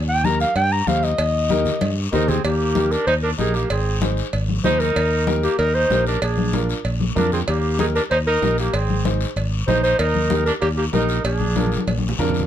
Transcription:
Already playing: D#2
0.09 G5
0.24 D#4 G4 A#4 A#5, high conga, short guiro
0.40 F5, short guiro
0.56 G2 G5, cowbell, long guiro
0.72 A#5
0.87 D#2 D#4 G4 C5 F5, high conga, short guiro
1.03 D#5, short guiro
1.18 D#2, cowbell, long guiro
1.50 D#4 G4 A#4, high conga, short guiro
1.65 low conga, short guiro
1.81 G2, cowbell, high conga, long guiro
2.12 D#2 D#4 G4 A#4 C5, low conga, short guiro
2.28 C4 G#4, low conga, short guiro
2.44 D#2 A#3 G4, cowbell, high conga, long guiro
2.75 D#4 G4 A#4, high conga, short guiro
2.91 D4 A#4, short guiro
3.07 D#2 D#4 C5, cowbell, high conga, long guiro
3.23 D4 A#4
3.38 A#1 D#4 G4 G#4 A#4, high conga, short guiro
3.54 A#3 G4, short guiro
3.70 G#1 C4 G#4, cowbell, high conga, long guiro
4.01 D#4 G#4 C5, high conga, short guiro
4.17 short guiro
4.33 G#1, cowbell, high conga, long guiro
4.49 high conga
4.64 D#2 D#4 G#4 C5, high conga, low conga, low timbale, short guiro
4.80 D#4 A#4, short guiro
4.96 D#2, cowbell, high conga, long guiro
5.27 D#4 G4 A#4, high conga, short guiro
5.43 A#3 G4, short guiro
5.58 D#2 D#4 A#4, cowbell, high conga, long guiro
5.74 D#4 C5
5.90 A#1 D#4 G4 A#4, high conga, low timbale, short guiro
6.07 D4 A#4, short guiro
6.22 A#1 D4 G#4, cowbell, high conga, long guiro
6.38 high conga
6.53 D4 F4 A#4, high conga, short guiro
6.69 short guiro
6.85 A#1, cowbell, high conga, long guiro
7.00 high conga
7.15 F2 D4 F4 A#4, high conga, low conga, low timbale, short guiro
7.32 C4 G#4, low conga, short guiro
7.48 D#2 A#3 G4, cowbell, high conga, long guiro
7.78 D#4 G4 G#4 A#4, high conga, short guiro
7.95 D4 A#4, short guiro
8.11 D#2 D#4 C5, cowbell, high conga, long guiro
8.27 D#4 A#4
8.42 A#1 D#4 G4 A#4, high conga, low timbale, short guiro
8.58 A#3 G4, short guiro
8.74 G#1 C4 G#4, cowbell, high conga, long guiro
8.90 high conga
9.05 D#4 G#4 C5, high conga, short guiro
9.21 short guiro
9.36 G#1, cowbell, high conga, long guiro
9.67 A#1 D#4 G#4 C5, high conga, low conga, short guiro
9.83 D#4 C5, short guiro
9.99 D#2 D#4 A#4, cowbell, high conga, long guiro
10.15 high conga
10.30 D#4 G4 A#4, high conga, short guiro
10.45 D4 A#4, short guiro
10.61 D#2 A#3 G4, cowbell, high conga, long guiro
10.77 A#3 G4
10.93 A#1 D#4 G4 A#4, high conga, low timbale, short guiro
11.09 short guiro
11.24 A#1 D4 G#4, cowbell, high conga, long guiro
11.40 high conga
11.56 D4 F4 A#4, high conga, short guiro
11.67 high conga
11.72 short guiro
11.77 high conga
11.87 A#1, cowbell, high conga, long guiro
11.98 high conga
12.09 low conga
12.19 F2 D4 F4 A#4, low conga, short guiro
12.30 low conga
12.34 short guiro
12.40 low conga

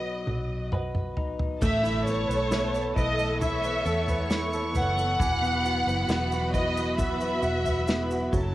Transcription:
Already playing: B1 B2 F#3 B3 D#4 F#4 B4 D#5
0.27 B1, mid tom
0.72 F#4 B4 D#5, mid tom
0.95 mid tom
1.17 D#4, floor tom
1.39 floor tom
1.61 A1 E3 A3 B3 A4 E5 A5, kick, floor tom, crash, impact, shaker
1.83 E4, shaker
2.05 B3 A4 C#5, shaker
2.28 B1 B4, shaker
2.51 B3 E4 B4, snare, shaker
2.74 A4, shaker
2.96 B1 E4 B4 D#5, kick, shaker
3.18 A4, shaker
3.41 E4 C#5 E5 C#6, floor tom, shaker
3.64 B4, shaker
3.85 E2 B3 A4, shaker
4.08 B4, floor tom, shaker
4.30 E4, snare, shaker
4.53 A4, shaker
4.74 F#1 B4 F#5, floor tom, shaker
4.97 A4, shaker
5.18 E1 E3 F#3 F#4 B4 B5, kick, floor tom, shaker
5.41 B3, shaker
5.64 B3 F#4, shaker
5.87 F#1 B4, shaker
6.09 E1 B3 E4 B4, snare, shaker
6.32 F#4, shaker
6.53 E4 B4 D#5, kick, shaker
6.77 F#4, shaker
6.98 B3 E5, kick, floor tom, shaker
7.21 B4, shaker
7.43 E1 B3 F#4, shaker
7.66 B4, floor tom, shaker
7.88 B3 E4, snare, shaker
8.11 F#4, shaker
8.32 F#1 C#3 F#3 A3 E4 A4 A5, kick, floor tom, shaker

